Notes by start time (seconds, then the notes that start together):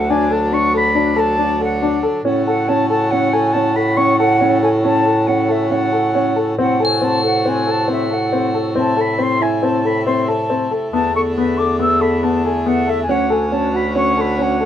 Already playing: D2 D3 F#3 F#5
0.09 D4 G#5
0.31 A4 A5
0.52 D4 C#6
0.74 A4 B5
0.95 D4
1.16 A4 A5
1.38 D4
1.60 A4 F#5
1.82 D4
2.03 A4
2.24 A2 C#3 A3 C#4 F#4
2.46 A4 F#5
2.68 C#4 A5
2.90 A4 A5
3.11 C#4 F#5
3.33 A4 G#5
3.53 C#4 A5
3.76 A4 B5
3.97 C#4 C#6
4.19 A4 F#5
4.41 C#4
4.63 A4 G#5
4.84 C#4 A5
5.05 A4
5.27 C#4 F#5
5.49 A4 E5
5.71 C#4 F#5
5.92 A4
6.15 C#4
6.36 A4
6.58 A2 C3 A3 C4 F#4 F#5
6.80 A4 G#5
6.85 C8
7.01 C4 A5
7.23 A4 F#5
7.46 C4 G#5
7.67 A4 A5
7.88 C4 E5
8.11 A4 F#5
8.33 C4
8.54 A4
8.76 C4 E4 A5
8.97 A4 B5
9.18 C4 C6
9.41 E4 G#5
9.63 C4 A5
9.85 A4 B5
10.06 C4 C6
10.28 A4 A5
10.50 C4
10.71 A4
10.93 E2 D3 B3 A5
11.16 A4 C#6
11.37 B3 B5
11.57 A4 D6
11.79 B3 E6
12.01 A4 B5
12.23 B3 A5
12.45 A4 G#5
12.66 B3 F#5
12.87 A4 E5
13.03 G#5
13.07 D2 C#4 F#4 F#5
13.30 A4 G#5
13.52 C#4 A5
13.73 F#4 B5
13.95 C#4 C#6
14.18 A4 B5
14.39 C#4 F#5
14.60 A4